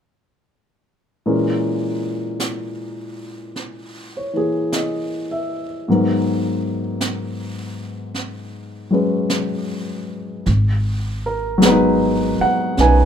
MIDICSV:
0, 0, Header, 1, 5, 480
1, 0, Start_track
1, 0, Key_signature, 5, "minor"
1, 0, Tempo, 1151631
1, 520, Time_signature, 4, 2, 24, 8
1, 5440, End_track
2, 0, Start_track
2, 0, Title_t, "Grand piano"
2, 0, Program_c, 0, 0
2, 524, Note_on_c, 0, 46, 35
2, 525, Note_on_c, 0, 52, 36
2, 525, Note_on_c, 0, 56, 38
2, 528, Note_on_c, 0, 61, 31
2, 528, Note_on_c, 0, 70, 42
2, 603, Control_c, 0, 64, 127
2, 1737, Note_on_c, 0, 73, 34
2, 1800, Note_off_c, 0, 52, 0
2, 1807, Note_on_c, 0, 52, 31
2, 1815, Note_on_c, 0, 58, 28
2, 1822, Note_on_c, 0, 68, 38
2, 1981, Note_on_c, 0, 75, 36
2, 2077, Note_off_c, 0, 73, 0
2, 2215, Note_on_c, 0, 76, 37
2, 2355, Note_off_c, 0, 75, 0
2, 2448, Note_off_c, 0, 52, 0
2, 2449, Note_off_c, 0, 46, 0
2, 2449, Note_off_c, 0, 56, 0
2, 2451, Note_off_c, 0, 61, 0
2, 2451, Note_off_c, 0, 70, 0
2, 2452, Note_off_c, 0, 58, 0
2, 2452, Note_on_c, 0, 44, 41
2, 2453, Control_c, 0, 64, 0
2, 2454, Note_on_c, 0, 51, 34
2, 2456, Note_off_c, 0, 68, 0
2, 2458, Note_on_c, 0, 54, 37
2, 2459, Note_on_c, 0, 59, 33
2, 2461, Note_on_c, 0, 70, 41
2, 2513, Control_c, 0, 64, 127
2, 2552, Note_off_c, 0, 76, 0
2, 3705, Note_off_c, 0, 54, 0
2, 3712, Note_on_c, 0, 54, 33
2, 3717, Note_on_c, 0, 56, 34
2, 3721, Note_on_c, 0, 61, 31
2, 3724, Note_on_c, 0, 71, 37
2, 4361, Note_off_c, 0, 54, 0
2, 4363, Note_off_c, 0, 44, 0
2, 4363, Note_off_c, 0, 56, 0
2, 4365, Note_off_c, 0, 51, 0
2, 4365, Note_off_c, 0, 61, 0
2, 4366, Control_c, 0, 64, 0
2, 4367, Note_off_c, 0, 59, 0
2, 4367, Note_off_c, 0, 71, 0
2, 4368, Note_off_c, 0, 70, 0
2, 4444, Control_c, 0, 64, 127
2, 4693, Note_on_c, 0, 70, 60
2, 4826, Note_on_c, 0, 54, 54
2, 4840, Note_on_c, 0, 56, 45
2, 4856, Note_off_c, 0, 70, 0
2, 4856, Note_on_c, 0, 59, 45
2, 4858, Note_on_c, 0, 71, 62
2, 4870, Note_on_c, 0, 63, 55
2, 5151, Note_off_c, 0, 71, 0
2, 5174, Note_on_c, 0, 78, 72
2, 5319, Note_off_c, 0, 78, 0
2, 5321, Note_on_c, 0, 61, 31
2, 5328, Note_off_c, 0, 63, 0
2, 5334, Note_on_c, 0, 63, 39
2, 5336, Note_on_c, 0, 71, 55
2, 5338, Note_on_c, 0, 80, 75
2, 5440, Note_off_c, 0, 54, 0
2, 5440, Note_off_c, 0, 56, 0
2, 5440, Note_off_c, 0, 59, 0
2, 5440, Note_off_c, 0, 61, 0
2, 5440, Note_off_c, 0, 63, 0
2, 5440, Note_off_c, 0, 71, 0
2, 5440, Note_off_c, 0, 80, 0
2, 5440, End_track
3, 0, Start_track
3, 0, Title_t, "Upright bass"
3, 0, Program_c, 1, 32
3, 4363, Note_on_c, 1, 32, 72
3, 5145, Note_off_c, 1, 32, 0
3, 5327, Note_on_c, 1, 35, 56
3, 5440, Note_off_c, 1, 35, 0
3, 5440, End_track
4, 0, Start_track
4, 0, Title_t, "Muted upright bass strokes"
4, 5165, Note_on_c, 9, 29, 34
4, 5207, Note_off_c, 9, 29, 0
4, 5440, End_track
5, 0, Start_track
5, 0, Title_t, "Drums"
5, 518, Note_on_c, 9, 25, 32
5, 999, Note_off_c, 9, 25, 0
5, 999, Note_on_c, 9, 25, 28
5, 999, Note_on_c, 9, 38, 38
5, 999, Note_on_c, 9, 44, 49
5, 1040, Note_off_c, 9, 38, 0
5, 1040, Note_off_c, 9, 44, 0
5, 1483, Note_off_c, 9, 25, 0
5, 1483, Note_on_c, 9, 25, 33
5, 1483, Note_on_c, 9, 38, 22
5, 1525, Note_off_c, 9, 38, 0
5, 1969, Note_off_c, 9, 25, 0
5, 1969, Note_on_c, 9, 25, 31
5, 1969, Note_on_c, 9, 38, 34
5, 1969, Note_on_c, 9, 44, 42
5, 2011, Note_off_c, 9, 38, 0
5, 2011, Note_off_c, 9, 44, 0
5, 2447, Note_off_c, 9, 25, 0
5, 2447, Note_on_c, 9, 25, 30
5, 2920, Note_off_c, 9, 25, 0
5, 2920, Note_on_c, 9, 25, 30
5, 2920, Note_on_c, 9, 38, 38
5, 2920, Note_on_c, 9, 44, 45
5, 2962, Note_off_c, 9, 38, 0
5, 2962, Note_off_c, 9, 44, 0
5, 3394, Note_off_c, 9, 25, 0
5, 3394, Note_on_c, 9, 25, 24
5, 3394, Note_on_c, 9, 38, 20
5, 3436, Note_off_c, 9, 38, 0
5, 3874, Note_off_c, 9, 25, 0
5, 3874, Note_on_c, 9, 25, 30
5, 3874, Note_on_c, 9, 38, 37
5, 3874, Note_on_c, 9, 44, 41
5, 3916, Note_off_c, 9, 38, 0
5, 3916, Note_off_c, 9, 44, 0
5, 4359, Note_off_c, 9, 25, 0
5, 4359, Note_on_c, 9, 25, 29
5, 4359, Note_on_c, 9, 38, 22
5, 4401, Note_off_c, 9, 38, 0
5, 4842, Note_off_c, 9, 25, 0
5, 4842, Note_on_c, 9, 25, 31
5, 4842, Note_on_c, 9, 38, 46
5, 4842, Note_on_c, 9, 44, 48
5, 4884, Note_off_c, 9, 38, 0
5, 4884, Note_off_c, 9, 44, 0
5, 5323, Note_off_c, 9, 25, 0
5, 5323, Note_on_c, 9, 25, 33
5, 5323, Note_on_c, 9, 38, 23
5, 5365, Note_off_c, 9, 38, 0
5, 5440, Note_off_c, 9, 25, 0
5, 5440, End_track
0, 0, End_of_file